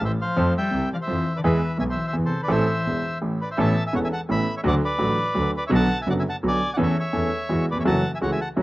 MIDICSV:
0, 0, Header, 1, 5, 480
1, 0, Start_track
1, 0, Key_signature, 0, "minor"
1, 0, Tempo, 356718
1, 497, Time_signature, 3, 2, 24, 8
1, 4817, Key_signature, 3, "major"
1, 11604, End_track
2, 0, Start_track
2, 0, Title_t, "Bandoneon"
2, 0, Program_c, 0, 23
2, 63, Note_on_c, 0, 72, 66
2, 63, Note_on_c, 0, 76, 85
2, 160, Note_off_c, 0, 72, 0
2, 161, Note_off_c, 0, 76, 0
2, 287, Note_on_c, 0, 77, 84
2, 291, Note_on_c, 0, 72, 67
2, 719, Note_off_c, 0, 77, 0
2, 721, Note_off_c, 0, 72, 0
2, 769, Note_on_c, 0, 76, 70
2, 778, Note_on_c, 0, 79, 88
2, 1199, Note_off_c, 0, 76, 0
2, 1204, Note_off_c, 0, 79, 0
2, 1251, Note_on_c, 0, 74, 66
2, 1270, Note_on_c, 0, 77, 77
2, 1297, Note_off_c, 0, 74, 0
2, 1311, Note_off_c, 0, 77, 0
2, 1362, Note_on_c, 0, 72, 69
2, 1380, Note_on_c, 0, 76, 88
2, 1794, Note_off_c, 0, 72, 0
2, 1832, Note_on_c, 0, 71, 61
2, 1844, Note_on_c, 0, 74, 79
2, 1849, Note_off_c, 0, 76, 0
2, 1881, Note_off_c, 0, 71, 0
2, 1891, Note_off_c, 0, 74, 0
2, 1943, Note_on_c, 0, 71, 69
2, 1955, Note_on_c, 0, 76, 90
2, 2384, Note_off_c, 0, 71, 0
2, 2390, Note_off_c, 0, 76, 0
2, 2414, Note_on_c, 0, 76, 64
2, 2426, Note_on_c, 0, 80, 91
2, 2467, Note_off_c, 0, 76, 0
2, 2477, Note_off_c, 0, 80, 0
2, 2551, Note_on_c, 0, 72, 64
2, 2573, Note_on_c, 0, 76, 77
2, 2758, Note_off_c, 0, 72, 0
2, 2777, Note_off_c, 0, 76, 0
2, 2778, Note_on_c, 0, 72, 63
2, 2797, Note_on_c, 0, 76, 83
2, 2884, Note_off_c, 0, 72, 0
2, 2899, Note_off_c, 0, 76, 0
2, 3034, Note_on_c, 0, 69, 55
2, 3036, Note_on_c, 0, 72, 74
2, 3246, Note_off_c, 0, 69, 0
2, 3248, Note_off_c, 0, 72, 0
2, 3262, Note_on_c, 0, 71, 56
2, 3284, Note_on_c, 0, 74, 76
2, 3369, Note_off_c, 0, 71, 0
2, 3370, Note_on_c, 0, 72, 70
2, 3380, Note_on_c, 0, 76, 84
2, 3391, Note_off_c, 0, 74, 0
2, 4280, Note_off_c, 0, 72, 0
2, 4284, Note_off_c, 0, 76, 0
2, 4591, Note_on_c, 0, 71, 56
2, 4607, Note_on_c, 0, 74, 72
2, 4696, Note_off_c, 0, 71, 0
2, 4705, Note_off_c, 0, 74, 0
2, 4717, Note_on_c, 0, 72, 60
2, 4732, Note_on_c, 0, 76, 73
2, 4810, Note_off_c, 0, 76, 0
2, 4820, Note_off_c, 0, 72, 0
2, 4830, Note_on_c, 0, 76, 75
2, 4843, Note_on_c, 0, 81, 92
2, 5159, Note_off_c, 0, 76, 0
2, 5166, Note_off_c, 0, 81, 0
2, 5202, Note_on_c, 0, 76, 64
2, 5217, Note_on_c, 0, 80, 80
2, 5303, Note_off_c, 0, 76, 0
2, 5311, Note_off_c, 0, 80, 0
2, 5314, Note_on_c, 0, 73, 66
2, 5325, Note_on_c, 0, 78, 89
2, 5364, Note_off_c, 0, 73, 0
2, 5373, Note_off_c, 0, 78, 0
2, 5443, Note_on_c, 0, 76, 63
2, 5446, Note_on_c, 0, 80, 81
2, 5491, Note_off_c, 0, 76, 0
2, 5493, Note_off_c, 0, 80, 0
2, 5553, Note_on_c, 0, 78, 73
2, 5562, Note_on_c, 0, 81, 88
2, 5658, Note_off_c, 0, 78, 0
2, 5664, Note_off_c, 0, 81, 0
2, 5799, Note_on_c, 0, 83, 94
2, 5800, Note_on_c, 0, 76, 79
2, 6123, Note_off_c, 0, 83, 0
2, 6124, Note_off_c, 0, 76, 0
2, 6149, Note_on_c, 0, 73, 66
2, 6153, Note_on_c, 0, 76, 84
2, 6200, Note_off_c, 0, 73, 0
2, 6203, Note_off_c, 0, 76, 0
2, 6287, Note_on_c, 0, 74, 75
2, 6287, Note_on_c, 0, 78, 98
2, 6388, Note_off_c, 0, 74, 0
2, 6388, Note_off_c, 0, 78, 0
2, 6520, Note_on_c, 0, 71, 73
2, 6525, Note_on_c, 0, 74, 87
2, 7412, Note_off_c, 0, 71, 0
2, 7415, Note_off_c, 0, 74, 0
2, 7494, Note_on_c, 0, 71, 62
2, 7502, Note_on_c, 0, 74, 84
2, 7587, Note_off_c, 0, 71, 0
2, 7591, Note_off_c, 0, 74, 0
2, 7628, Note_on_c, 0, 76, 84
2, 7636, Note_on_c, 0, 73, 65
2, 7670, Note_off_c, 0, 76, 0
2, 7676, Note_off_c, 0, 73, 0
2, 7735, Note_on_c, 0, 78, 78
2, 7735, Note_on_c, 0, 81, 105
2, 8050, Note_off_c, 0, 78, 0
2, 8084, Note_off_c, 0, 81, 0
2, 8094, Note_on_c, 0, 76, 64
2, 8097, Note_on_c, 0, 80, 79
2, 8187, Note_off_c, 0, 76, 0
2, 8188, Note_off_c, 0, 80, 0
2, 8205, Note_on_c, 0, 74, 70
2, 8209, Note_on_c, 0, 78, 87
2, 8252, Note_off_c, 0, 74, 0
2, 8254, Note_off_c, 0, 78, 0
2, 8330, Note_on_c, 0, 76, 67
2, 8344, Note_on_c, 0, 80, 83
2, 8375, Note_off_c, 0, 76, 0
2, 8386, Note_off_c, 0, 80, 0
2, 8464, Note_on_c, 0, 78, 68
2, 8471, Note_on_c, 0, 81, 87
2, 8560, Note_off_c, 0, 78, 0
2, 8566, Note_off_c, 0, 81, 0
2, 8717, Note_on_c, 0, 74, 77
2, 8719, Note_on_c, 0, 80, 99
2, 9021, Note_off_c, 0, 74, 0
2, 9053, Note_on_c, 0, 74, 65
2, 9055, Note_off_c, 0, 80, 0
2, 9065, Note_on_c, 0, 78, 78
2, 9097, Note_off_c, 0, 74, 0
2, 9107, Note_off_c, 0, 78, 0
2, 9182, Note_on_c, 0, 76, 90
2, 9187, Note_on_c, 0, 73, 75
2, 9382, Note_off_c, 0, 76, 0
2, 9385, Note_off_c, 0, 73, 0
2, 9410, Note_on_c, 0, 73, 76
2, 9423, Note_on_c, 0, 76, 93
2, 10300, Note_off_c, 0, 73, 0
2, 10307, Note_off_c, 0, 76, 0
2, 10376, Note_on_c, 0, 74, 76
2, 10377, Note_on_c, 0, 71, 58
2, 10469, Note_off_c, 0, 71, 0
2, 10469, Note_off_c, 0, 74, 0
2, 10493, Note_on_c, 0, 73, 58
2, 10493, Note_on_c, 0, 76, 78
2, 10538, Note_off_c, 0, 73, 0
2, 10538, Note_off_c, 0, 76, 0
2, 10585, Note_on_c, 0, 78, 73
2, 10588, Note_on_c, 0, 81, 94
2, 10916, Note_off_c, 0, 78, 0
2, 10917, Note_off_c, 0, 81, 0
2, 10961, Note_on_c, 0, 76, 60
2, 10974, Note_on_c, 0, 80, 77
2, 11009, Note_off_c, 0, 76, 0
2, 11019, Note_off_c, 0, 80, 0
2, 11066, Note_on_c, 0, 73, 65
2, 11069, Note_on_c, 0, 78, 83
2, 11172, Note_off_c, 0, 73, 0
2, 11185, Note_off_c, 0, 78, 0
2, 11192, Note_on_c, 0, 76, 64
2, 11194, Note_on_c, 0, 80, 80
2, 11296, Note_off_c, 0, 76, 0
2, 11308, Note_off_c, 0, 80, 0
2, 11316, Note_on_c, 0, 78, 66
2, 11317, Note_on_c, 0, 81, 89
2, 11419, Note_off_c, 0, 78, 0
2, 11420, Note_off_c, 0, 81, 0
2, 11604, End_track
3, 0, Start_track
3, 0, Title_t, "Cello"
3, 0, Program_c, 1, 42
3, 63, Note_on_c, 1, 52, 72
3, 161, Note_off_c, 1, 52, 0
3, 297, Note_on_c, 1, 53, 72
3, 724, Note_off_c, 1, 53, 0
3, 770, Note_on_c, 1, 55, 71
3, 1199, Note_off_c, 1, 55, 0
3, 1247, Note_on_c, 1, 53, 68
3, 1294, Note_off_c, 1, 53, 0
3, 1392, Note_on_c, 1, 52, 71
3, 1810, Note_off_c, 1, 52, 0
3, 1862, Note_on_c, 1, 50, 62
3, 1905, Note_off_c, 1, 50, 0
3, 1968, Note_on_c, 1, 52, 76
3, 2397, Note_off_c, 1, 52, 0
3, 2438, Note_on_c, 1, 56, 73
3, 2486, Note_off_c, 1, 56, 0
3, 2564, Note_on_c, 1, 52, 63
3, 2771, Note_off_c, 1, 52, 0
3, 2780, Note_on_c, 1, 52, 63
3, 2886, Note_off_c, 1, 52, 0
3, 3022, Note_on_c, 1, 48, 61
3, 3240, Note_off_c, 1, 48, 0
3, 3264, Note_on_c, 1, 50, 61
3, 3370, Note_off_c, 1, 50, 0
3, 3407, Note_on_c, 1, 52, 73
3, 4298, Note_off_c, 1, 52, 0
3, 11604, End_track
4, 0, Start_track
4, 0, Title_t, "Grand piano"
4, 0, Program_c, 2, 0
4, 13, Note_on_c, 2, 33, 49
4, 19, Note_on_c, 2, 45, 48
4, 216, Note_off_c, 2, 33, 0
4, 219, Note_off_c, 2, 45, 0
4, 490, Note_on_c, 2, 60, 57
4, 491, Note_on_c, 2, 53, 72
4, 494, Note_on_c, 2, 57, 56
4, 495, Note_on_c, 2, 41, 76
4, 500, Note_on_c, 2, 69, 68
4, 694, Note_off_c, 2, 60, 0
4, 697, Note_off_c, 2, 41, 0
4, 697, Note_off_c, 2, 53, 0
4, 697, Note_off_c, 2, 57, 0
4, 700, Note_off_c, 2, 69, 0
4, 957, Note_on_c, 2, 48, 49
4, 958, Note_on_c, 2, 36, 51
4, 1167, Note_off_c, 2, 48, 0
4, 1168, Note_off_c, 2, 36, 0
4, 1441, Note_on_c, 2, 41, 48
4, 1450, Note_on_c, 2, 53, 53
4, 1649, Note_off_c, 2, 41, 0
4, 1653, Note_off_c, 2, 53, 0
4, 1936, Note_on_c, 2, 40, 74
4, 1937, Note_on_c, 2, 59, 60
4, 1940, Note_on_c, 2, 68, 69
4, 1941, Note_on_c, 2, 52, 79
4, 1944, Note_on_c, 2, 56, 59
4, 2135, Note_off_c, 2, 40, 0
4, 2136, Note_off_c, 2, 59, 0
4, 2137, Note_off_c, 2, 68, 0
4, 2139, Note_off_c, 2, 52, 0
4, 2139, Note_off_c, 2, 56, 0
4, 2393, Note_on_c, 2, 35, 50
4, 2399, Note_on_c, 2, 47, 54
4, 2603, Note_off_c, 2, 35, 0
4, 2607, Note_off_c, 2, 47, 0
4, 2869, Note_on_c, 2, 52, 48
4, 2872, Note_on_c, 2, 40, 52
4, 3081, Note_off_c, 2, 52, 0
4, 3083, Note_off_c, 2, 40, 0
4, 3336, Note_on_c, 2, 57, 57
4, 3341, Note_on_c, 2, 33, 72
4, 3342, Note_on_c, 2, 52, 62
4, 3344, Note_on_c, 2, 45, 72
4, 3352, Note_on_c, 2, 60, 53
4, 3357, Note_on_c, 2, 69, 70
4, 3555, Note_off_c, 2, 57, 0
4, 3558, Note_off_c, 2, 33, 0
4, 3558, Note_off_c, 2, 52, 0
4, 3559, Note_off_c, 2, 45, 0
4, 3563, Note_off_c, 2, 60, 0
4, 3566, Note_off_c, 2, 69, 0
4, 3853, Note_on_c, 2, 40, 50
4, 3855, Note_on_c, 2, 28, 50
4, 4054, Note_off_c, 2, 40, 0
4, 4056, Note_off_c, 2, 28, 0
4, 4328, Note_on_c, 2, 45, 48
4, 4329, Note_on_c, 2, 33, 50
4, 4534, Note_off_c, 2, 45, 0
4, 4535, Note_off_c, 2, 33, 0
4, 4809, Note_on_c, 2, 52, 60
4, 4812, Note_on_c, 2, 45, 72
4, 4812, Note_on_c, 2, 59, 59
4, 4816, Note_on_c, 2, 61, 55
4, 4820, Note_on_c, 2, 33, 74
4, 4820, Note_on_c, 2, 69, 74
4, 5015, Note_off_c, 2, 52, 0
4, 5017, Note_off_c, 2, 45, 0
4, 5017, Note_off_c, 2, 59, 0
4, 5019, Note_off_c, 2, 61, 0
4, 5021, Note_off_c, 2, 33, 0
4, 5021, Note_off_c, 2, 69, 0
4, 5285, Note_on_c, 2, 59, 41
4, 5288, Note_on_c, 2, 28, 50
4, 5288, Note_on_c, 2, 61, 44
4, 5291, Note_on_c, 2, 40, 54
4, 5292, Note_on_c, 2, 52, 41
4, 5296, Note_on_c, 2, 69, 51
4, 5493, Note_off_c, 2, 59, 0
4, 5495, Note_off_c, 2, 28, 0
4, 5495, Note_off_c, 2, 61, 0
4, 5496, Note_off_c, 2, 40, 0
4, 5497, Note_off_c, 2, 52, 0
4, 5499, Note_off_c, 2, 69, 0
4, 5770, Note_on_c, 2, 52, 44
4, 5772, Note_on_c, 2, 45, 54
4, 5775, Note_on_c, 2, 69, 48
4, 5781, Note_on_c, 2, 61, 42
4, 5782, Note_on_c, 2, 59, 42
4, 5784, Note_on_c, 2, 33, 53
4, 5976, Note_off_c, 2, 45, 0
4, 5976, Note_off_c, 2, 52, 0
4, 5978, Note_off_c, 2, 69, 0
4, 5981, Note_off_c, 2, 59, 0
4, 5981, Note_off_c, 2, 61, 0
4, 5982, Note_off_c, 2, 33, 0
4, 6238, Note_on_c, 2, 50, 71
4, 6238, Note_on_c, 2, 57, 57
4, 6239, Note_on_c, 2, 38, 77
4, 6243, Note_on_c, 2, 54, 59
4, 6243, Note_on_c, 2, 66, 66
4, 6449, Note_off_c, 2, 38, 0
4, 6449, Note_off_c, 2, 57, 0
4, 6450, Note_off_c, 2, 50, 0
4, 6451, Note_off_c, 2, 54, 0
4, 6451, Note_off_c, 2, 66, 0
4, 6708, Note_on_c, 2, 45, 54
4, 6709, Note_on_c, 2, 33, 57
4, 6709, Note_on_c, 2, 57, 41
4, 6710, Note_on_c, 2, 54, 41
4, 6711, Note_on_c, 2, 50, 44
4, 6716, Note_on_c, 2, 66, 49
4, 6923, Note_off_c, 2, 45, 0
4, 6924, Note_off_c, 2, 33, 0
4, 6924, Note_off_c, 2, 54, 0
4, 6924, Note_off_c, 2, 57, 0
4, 6925, Note_off_c, 2, 50, 0
4, 6927, Note_off_c, 2, 66, 0
4, 7190, Note_on_c, 2, 50, 52
4, 7194, Note_on_c, 2, 38, 52
4, 7194, Note_on_c, 2, 57, 41
4, 7194, Note_on_c, 2, 66, 49
4, 7196, Note_on_c, 2, 54, 42
4, 7405, Note_off_c, 2, 50, 0
4, 7406, Note_off_c, 2, 38, 0
4, 7406, Note_off_c, 2, 57, 0
4, 7406, Note_off_c, 2, 66, 0
4, 7407, Note_off_c, 2, 54, 0
4, 7662, Note_on_c, 2, 50, 68
4, 7663, Note_on_c, 2, 54, 60
4, 7666, Note_on_c, 2, 47, 79
4, 7671, Note_on_c, 2, 66, 70
4, 7673, Note_on_c, 2, 59, 63
4, 7675, Note_on_c, 2, 35, 78
4, 7879, Note_off_c, 2, 50, 0
4, 7880, Note_off_c, 2, 54, 0
4, 7881, Note_off_c, 2, 47, 0
4, 7884, Note_off_c, 2, 66, 0
4, 7885, Note_off_c, 2, 59, 0
4, 7886, Note_off_c, 2, 35, 0
4, 8159, Note_on_c, 2, 30, 52
4, 8161, Note_on_c, 2, 42, 54
4, 8165, Note_on_c, 2, 50, 49
4, 8167, Note_on_c, 2, 54, 44
4, 8169, Note_on_c, 2, 59, 41
4, 8174, Note_on_c, 2, 66, 50
4, 8367, Note_off_c, 2, 30, 0
4, 8368, Note_off_c, 2, 42, 0
4, 8370, Note_off_c, 2, 50, 0
4, 8372, Note_off_c, 2, 54, 0
4, 8372, Note_off_c, 2, 59, 0
4, 8375, Note_off_c, 2, 66, 0
4, 8653, Note_on_c, 2, 35, 50
4, 8654, Note_on_c, 2, 50, 47
4, 8655, Note_on_c, 2, 47, 54
4, 8656, Note_on_c, 2, 54, 42
4, 8659, Note_on_c, 2, 59, 42
4, 8662, Note_on_c, 2, 66, 49
4, 8854, Note_off_c, 2, 35, 0
4, 8854, Note_off_c, 2, 50, 0
4, 8855, Note_off_c, 2, 47, 0
4, 8856, Note_off_c, 2, 54, 0
4, 8857, Note_off_c, 2, 59, 0
4, 8858, Note_off_c, 2, 66, 0
4, 9109, Note_on_c, 2, 52, 75
4, 9113, Note_on_c, 2, 57, 59
4, 9115, Note_on_c, 2, 61, 61
4, 9117, Note_on_c, 2, 40, 78
4, 9129, Note_on_c, 2, 69, 70
4, 9324, Note_off_c, 2, 57, 0
4, 9325, Note_off_c, 2, 61, 0
4, 9326, Note_off_c, 2, 40, 0
4, 9328, Note_off_c, 2, 52, 0
4, 9332, Note_off_c, 2, 69, 0
4, 9594, Note_on_c, 2, 40, 55
4, 9594, Note_on_c, 2, 52, 56
4, 9594, Note_on_c, 2, 61, 42
4, 9599, Note_on_c, 2, 69, 47
4, 9600, Note_on_c, 2, 57, 40
4, 9805, Note_off_c, 2, 40, 0
4, 9805, Note_off_c, 2, 61, 0
4, 9808, Note_off_c, 2, 57, 0
4, 9808, Note_off_c, 2, 69, 0
4, 9809, Note_off_c, 2, 52, 0
4, 10077, Note_on_c, 2, 56, 40
4, 10078, Note_on_c, 2, 40, 50
4, 10083, Note_on_c, 2, 52, 50
4, 10085, Note_on_c, 2, 59, 40
4, 10091, Note_on_c, 2, 66, 47
4, 10288, Note_off_c, 2, 40, 0
4, 10288, Note_off_c, 2, 56, 0
4, 10292, Note_off_c, 2, 59, 0
4, 10293, Note_off_c, 2, 52, 0
4, 10295, Note_off_c, 2, 66, 0
4, 10391, Note_on_c, 2, 39, 43
4, 10448, Note_on_c, 2, 40, 56
4, 10453, Note_off_c, 2, 39, 0
4, 10506, Note_on_c, 2, 41, 68
4, 10512, Note_off_c, 2, 40, 0
4, 10561, Note_on_c, 2, 57, 61
4, 10567, Note_on_c, 2, 52, 61
4, 10568, Note_on_c, 2, 61, 59
4, 10570, Note_on_c, 2, 42, 71
4, 10571, Note_off_c, 2, 41, 0
4, 10572, Note_on_c, 2, 54, 75
4, 10572, Note_on_c, 2, 66, 65
4, 10770, Note_off_c, 2, 57, 0
4, 10773, Note_off_c, 2, 52, 0
4, 10774, Note_off_c, 2, 61, 0
4, 10775, Note_off_c, 2, 42, 0
4, 10775, Note_off_c, 2, 54, 0
4, 10775, Note_off_c, 2, 66, 0
4, 11049, Note_on_c, 2, 57, 39
4, 11051, Note_on_c, 2, 52, 44
4, 11056, Note_on_c, 2, 37, 53
4, 11057, Note_on_c, 2, 49, 51
4, 11057, Note_on_c, 2, 66, 50
4, 11063, Note_on_c, 2, 61, 38
4, 11254, Note_off_c, 2, 57, 0
4, 11255, Note_off_c, 2, 52, 0
4, 11257, Note_off_c, 2, 37, 0
4, 11258, Note_off_c, 2, 49, 0
4, 11258, Note_off_c, 2, 66, 0
4, 11261, Note_off_c, 2, 61, 0
4, 11523, Note_on_c, 2, 52, 45
4, 11527, Note_on_c, 2, 57, 42
4, 11527, Note_on_c, 2, 66, 51
4, 11528, Note_on_c, 2, 42, 56
4, 11530, Note_on_c, 2, 54, 54
4, 11532, Note_on_c, 2, 61, 44
4, 11604, Note_off_c, 2, 42, 0
4, 11604, Note_off_c, 2, 52, 0
4, 11604, Note_off_c, 2, 54, 0
4, 11604, Note_off_c, 2, 57, 0
4, 11604, Note_off_c, 2, 61, 0
4, 11604, Note_off_c, 2, 66, 0
4, 11604, End_track
5, 0, Start_track
5, 0, Title_t, "Double bass"
5, 0, Program_c, 3, 43
5, 26, Note_on_c, 3, 33, 61
5, 223, Note_off_c, 3, 33, 0
5, 507, Note_on_c, 3, 41, 84
5, 703, Note_off_c, 3, 41, 0
5, 993, Note_on_c, 3, 36, 58
5, 1185, Note_off_c, 3, 36, 0
5, 1468, Note_on_c, 3, 41, 59
5, 1662, Note_off_c, 3, 41, 0
5, 1943, Note_on_c, 3, 40, 80
5, 2139, Note_off_c, 3, 40, 0
5, 2438, Note_on_c, 3, 35, 59
5, 2626, Note_off_c, 3, 35, 0
5, 2918, Note_on_c, 3, 40, 56
5, 3106, Note_off_c, 3, 40, 0
5, 3377, Note_on_c, 3, 33, 84
5, 3576, Note_off_c, 3, 33, 0
5, 3870, Note_on_c, 3, 28, 52
5, 4063, Note_off_c, 3, 28, 0
5, 4840, Note_on_c, 3, 33, 81
5, 5030, Note_off_c, 3, 33, 0
5, 5322, Note_on_c, 3, 28, 59
5, 5511, Note_off_c, 3, 28, 0
5, 5791, Note_on_c, 3, 33, 61
5, 5986, Note_off_c, 3, 33, 0
5, 6268, Note_on_c, 3, 38, 83
5, 6463, Note_off_c, 3, 38, 0
5, 6751, Note_on_c, 3, 33, 62
5, 6945, Note_off_c, 3, 33, 0
5, 7226, Note_on_c, 3, 38, 65
5, 7422, Note_off_c, 3, 38, 0
5, 7701, Note_on_c, 3, 35, 89
5, 7899, Note_off_c, 3, 35, 0
5, 8181, Note_on_c, 3, 30, 61
5, 8378, Note_off_c, 3, 30, 0
5, 8664, Note_on_c, 3, 35, 60
5, 8860, Note_off_c, 3, 35, 0
5, 9136, Note_on_c, 3, 40, 84
5, 9335, Note_off_c, 3, 40, 0
5, 9620, Note_on_c, 3, 40, 58
5, 9818, Note_off_c, 3, 40, 0
5, 10110, Note_on_c, 3, 40, 58
5, 10305, Note_off_c, 3, 40, 0
5, 10601, Note_on_c, 3, 30, 83
5, 10790, Note_off_c, 3, 30, 0
5, 11071, Note_on_c, 3, 37, 55
5, 11265, Note_off_c, 3, 37, 0
5, 11560, Note_on_c, 3, 30, 63
5, 11604, Note_off_c, 3, 30, 0
5, 11604, End_track
0, 0, End_of_file